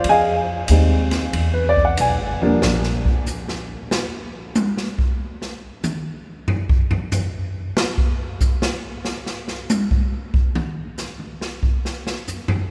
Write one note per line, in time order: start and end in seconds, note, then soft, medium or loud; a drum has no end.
0.04 0.67 F2 medium
0.04 kick soft
0.04 ride medium
0.09 0.33 G#4 medium
0.09 0.33 D#5 medium
0.09 0.35 F5 medium
0.09 0.34 G#5 loud
0.68 1.32 D#2 loud
0.68 1.08 G3 medium
0.68 1.08 G#3 soft
0.68 1.09 C4 medium
0.68 1.09 D#4 medium
0.68 kick soft
0.68 hi-hat pedal medium
0.68 ride medium
1.11 snare medium
1.11 ride soft
1.33 1.96 E2 medium
1.33 kick soft
1.33 ride medium
1.54 1.75 B4 medium
1.69 1.83 D5 loud
1.76 kick medium
1.85 1.96 F#5 medium
1.97 2.19 B1 medium
1.97 2.49 G#5 medium
1.97 hi-hat pedal medium
1.97 ride medium
2.19 2.40 G#1 medium
2.40 2.60 E1 medium
2.40 3.06 F3 medium
2.40 3.06 G3 medium
2.40 3.06 A#3 medium
2.40 3.06 D4 medium
2.62 3.04 A#1 medium
2.62 snare loud
2.83 snare soft
3.05 kick medium
3.26 hi-hat pedal medium
3.48 snare soft
3.91 snare loud
4.55 hi-hat pedal medium
4.55 high tom loud
4.77 snare soft
4.98 kick medium
5.42 snare soft
5.83 hi-hat pedal medium
5.83 mid tom loud
6.48 floor tom loud
6.69 kick medium
6.91 floor tom loud
7.12 floor tom loud
7.12 hi-hat pedal medium
7.77 snare loud
7.98 kick medium
8.40 kick medium
8.40 hi-hat pedal medium
8.62 snare medium
9.05 snare medium
9.26 snare soft
9.48 snare soft
9.70 hi-hat pedal medium
9.70 high tom loud
9.91 kick medium
10.34 kick medium
10.55 mid tom loud
10.98 snare soft
10.98 hi-hat pedal medium
11.19 mid tom soft
11.41 snare soft
11.63 kick medium
11.85 snare soft
12.07 snare medium
12.28 floor tom soft
12.28 hi-hat pedal medium
12.48 floor tom loud